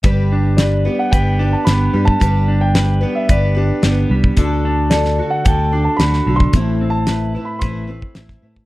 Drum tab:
HH |x---x---x---x---|x---x---x---x---|x---x---x---x---|x---x---x---x---|
SD |----o-------o---|----o-------o---|----oo------oo--|----o-------oo--|
BD |o-------o------o|o-------o------o|o-------o------o|o-------o--o-o-o|